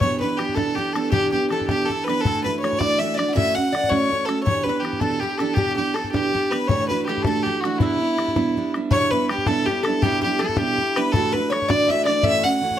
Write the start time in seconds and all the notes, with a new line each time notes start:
0.00 E2 B2 E3 B3 D4 G4 C#5, bodhran
0.20 E3 B3 D4 G4 B4, bodhran
0.37 E3 B3 D4 G4, bodhran
0.49 bodhran
0.54 B2 E3 B3 D4 G4 A4, bodhran
0.59 E2
0.75 E3 B3 D4 G4, bodhran
0.93 B3 D4 G4 A4, bodhran
0.97 E3
1.12 E2 B2 E3 B3 D4 G4, bodhran
1.32 E3 B3 D4 G4, bodhran
1.50 E3 B3 D4 G4 A4, bodhran
1.61 bodhran
1.67 E2 B2 E3 B3 D4 G4, bodhran
1.71 G4
1.86 E3 B3 A4
1.90 D4 G4 A4, bodhran
2.04 B3 D4 G4 B4, bodhran
2.09 E3 B4
2.21 D2 A4
2.25 A2 E3 A3 D4 F#4 A4, bodhran
2.44 E3 A3 D4 F#4 B4, bodhran
2.59 E3 A3 D4 C#5
2.64 F#4 C#5, bodhran
2.73 bodhran
2.79 D2 A2 E3 A3 D4 F#4 D5, bodhran
2.98 E3 A3 D4 F#4 E5
3.14 F#4 D5
3.18 E3 A3 D4, bodhran
3.28 F#5
3.34 A2 E3 A3 C#4 F#4 E5, bodhran
3.55 A3 C#4 F#4 F#5, bodhran
3.72 E3 A3 C#4 F#4 D5, bodhran
3.84 bodhran
3.89 A2 E3 A3 C#4 F#4 C#5, bodhran
4.10 E3 A3 C#4 F#4, bodhran
4.25 C#4 F#4 A4, bodhran
4.30 A3
4.43 E2 B2 E3 B3 D4 G4 C#5, bodhran
4.48 C#5
4.63 E3 B3 D4 G4 B4, bodhran
4.69 B4
4.80 E3 B3 D4 G4
4.85 G4, bodhran
4.93 bodhran
5.00 E2 B2 E3 B3 D4 G4 A4, bodhran
5.20 E3 B3 D4 G4, bodhran
5.38 E3 B3 D4 G4 A4, bodhran
5.54 E2 B2 E3 B3 D4 G4, bodhran
5.58 G4
5.76 E3 B3 D4 G4, bodhran
5.94 E3 B3 D4 G4 A4, bodhran
6.04 bodhran
6.12 E2 B2 E3 B3 D4 G4, bodhran
6.16 G4
6.33 E3 B3 D4 G4, bodhran
6.51 E3 B3 D4 G4 B4, bodhran
6.67 D2 A2 E3 A3 D4 F#4 C#5, bodhran
6.84 C#5
6.88 A3 D4 F#4 B4, bodhran
6.92 E3
7.06 E3 A3 D4 F#4 G4, bodhran
7.17 bodhran
7.23 E3 A3 D4 F#4 A4, bodhran
7.27 D2 A2 A4
7.43 E3 A3 D4 G4, bodhran
7.48 F#4
7.60 F#4, bodhran
7.65 E3 A3 D4 F#4
7.78 E2 B2 G3 B3 D4 E4, bodhran
7.82 E4
8.00 G3 B3 D4 E4
8.18 G3 B3 D4 E4, bodhran
8.28 bodhran
8.36 E2 B2 G3 B3 D4 E4, bodhran
8.57 G3 B3 D4 E4, bodhran
8.74 G3 B3 D4 E4, bodhran
8.91 E2 B2 G3 B3 D4 E4 C#5, bodhran
9.11 G3 B3 D4 E4 B4, bodhran
9.29 G3 B3 D4 E4 G4, bodhran
9.38 bodhran
9.46 E2 B2 G3 B3 D4 E4 A4, bodhran
9.66 G3 B3 G4, bodhran
9.70 D4 E4
9.83 E4 A4, bodhran
9.87 G3 B3 D4
10.02 E2 B2 G3 B3 D4 E4 G4, bodhran
10.22 B3 D4 E4 G4, bodhran
10.26 G3
10.39 G3 B3 A4, bodhran
10.43 D4 E4
10.49 bodhran
10.57 B2 G3 B3 D4 E4 G4, bodhran
10.61 E2
10.78 G3 B3 D4 E4, bodhran
10.96 G3 B3 D4 E4 B4, bodhran
11.12 D2 A2 E3 D4 A4, bodhran
11.16 A3 F#4
11.32 D4 F#4 B4, bodhran
11.37 E3 A3
11.50 E3 A3 D4 C#5, bodhran
11.54 F#4
11.62 bodhran
11.68 D2 A2 E3 A3 D4 F#4 D5, bodhran
11.88 E3 A3 D4 F#4 E5, bodhran
12.05 E3 A3 D4 F#4 D5, bodhran
12.23 A2 E3 A3 C#4 F#4 E5, bodhran
12.44 A3 C#4 F#4 F#5, bodhran
12.61 E3 A3 C#4 F#4
12.71 bodhran